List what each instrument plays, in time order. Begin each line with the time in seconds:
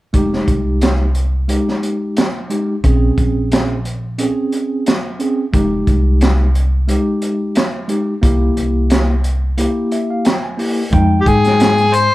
0.13 upright bass F1, tine electric piano G#3 D#4 G4, kick, closed hi-hat
0.34 snare
0.48 upright bass C2, kick, closed hi-hat
0.81 snare, closed hi-hat
1.15 closed hi-hat
1.48 tine electric piano G#3 D#4 G4, closed hi-hat
1.69 snare
1.83 closed hi-hat
2.17 snare, closed hi-hat
2.50 tine electric piano G#3 D#4 G4, closed hi-hat
2.84 upright bass A#1, tine electric piano C4 C#4 G#4, kick, closed hi-hat
3.18 upright bass A#1, kick, closed hi-hat
3.52 snare, closed hi-hat
3.85 closed hi-hat
4.18 tine electric piano C4 C#4 G#4, closed hi-hat
4.52 closed hi-hat
4.86 snare, closed hi-hat
5.19 tine electric piano C4 C#4 G#4, closed hi-hat
5.53 upright bass F1, tine electric piano G#3 D#4 G4, kick, closed hi-hat
5.87 upright bass C2, kick, closed hi-hat
6.21 snare, closed hi-hat
6.55 closed hi-hat
6.88 tine electric piano G#3 D#4 G4, closed hi-hat
7.22 closed hi-hat
7.55 snare, closed hi-hat
7.88 tine electric piano G#3 D#4 G4, closed hi-hat
8.22 upright bass C2, tine electric piano A#3 E4 G4, kick, closed hi-hat
8.57 upright bass C2, closed hi-hat
8.90 snare, closed hi-hat
9.24 closed hi-hat
9.58 tine electric piano A#3 E4 G4, closed hi-hat
9.92 tine electric piano E5, closed hi-hat
10.10 tine electric piano F5
10.25 tine electric piano G5, snare, closed hi-hat
10.43 tine electric piano G#5
10.58 tine electric piano A#3 E4 G4, open hi-hat
10.91 upright bass F2, tine electric piano G#3 D#4 G5, kick, closed hi-hat
11.21 harmonica G4
11.26 upright bass G#2, harmonica G#4, kick, closed hi-hat
11.44 snare, closed hi-hat
11.60 snare, closed hi-hat
11.78 closed hi-hat
11.93 harmonica C5, closed hi-hat